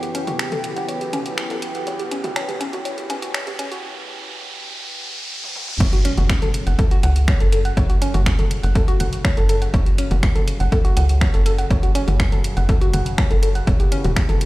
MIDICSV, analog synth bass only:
0, 0, Header, 1, 2, 480
1, 0, Start_track
1, 0, Tempo, 491803
1, 1824, Time_signature, 4, 2, 24, 8
1, 14108, End_track
2, 0, Start_track
2, 0, Title_t, "Analog synth bass"
2, 0, Program_c, 0, 38
2, 267, Note_on_c, 0, 30, 91
2, 571, Note_off_c, 0, 30, 0
2, 747, Note_on_c, 0, 28, 98
2, 1051, Note_off_c, 0, 28, 0
2, 1104, Note_on_c, 0, 28, 80
2, 1192, Note_off_c, 0, 28, 0
2, 1467, Note_on_c, 0, 31, 99
2, 1771, Note_off_c, 0, 31, 0
2, 1824, Note_on_c, 0, 28, 99
2, 1912, Note_off_c, 0, 28, 0
2, 2187, Note_on_c, 0, 28, 104
2, 2491, Note_off_c, 0, 28, 0
2, 2667, Note_on_c, 0, 28, 91
2, 2751, Note_off_c, 0, 28, 0
2, 3024, Note_on_c, 0, 35, 88
2, 3331, Note_off_c, 0, 35, 0
2, 3386, Note_on_c, 0, 28, 83
2, 3691, Note_off_c, 0, 28, 0
2, 5664, Note_on_c, 0, 30, 101
2, 5752, Note_off_c, 0, 30, 0
2, 6027, Note_on_c, 0, 30, 103
2, 6331, Note_off_c, 0, 30, 0
2, 6507, Note_on_c, 0, 30, 94
2, 6591, Note_off_c, 0, 30, 0
2, 6864, Note_on_c, 0, 37, 84
2, 7171, Note_off_c, 0, 37, 0
2, 7227, Note_on_c, 0, 30, 85
2, 7531, Note_off_c, 0, 30, 0
2, 7584, Note_on_c, 0, 31, 109
2, 7672, Note_off_c, 0, 31, 0
2, 7947, Note_on_c, 0, 31, 93
2, 8251, Note_off_c, 0, 31, 0
2, 8427, Note_on_c, 0, 30, 99
2, 8731, Note_off_c, 0, 30, 0
2, 8784, Note_on_c, 0, 30, 81
2, 8872, Note_off_c, 0, 30, 0
2, 9147, Note_on_c, 0, 30, 92
2, 9451, Note_off_c, 0, 30, 0
2, 9504, Note_on_c, 0, 30, 99
2, 9592, Note_off_c, 0, 30, 0
2, 9866, Note_on_c, 0, 30, 103
2, 10171, Note_off_c, 0, 30, 0
2, 10347, Note_on_c, 0, 30, 90
2, 10431, Note_off_c, 0, 30, 0
2, 10704, Note_on_c, 0, 37, 85
2, 11011, Note_off_c, 0, 37, 0
2, 11068, Note_on_c, 0, 30, 84
2, 11371, Note_off_c, 0, 30, 0
2, 11424, Note_on_c, 0, 31, 107
2, 11512, Note_off_c, 0, 31, 0
2, 11787, Note_on_c, 0, 31, 95
2, 12091, Note_off_c, 0, 31, 0
2, 12267, Note_on_c, 0, 30, 95
2, 12571, Note_off_c, 0, 30, 0
2, 12624, Note_on_c, 0, 30, 83
2, 12712, Note_off_c, 0, 30, 0
2, 12987, Note_on_c, 0, 30, 91
2, 13291, Note_off_c, 0, 30, 0
2, 13345, Note_on_c, 0, 28, 106
2, 13432, Note_off_c, 0, 28, 0
2, 13707, Note_on_c, 0, 28, 102
2, 14011, Note_off_c, 0, 28, 0
2, 14108, End_track
0, 0, End_of_file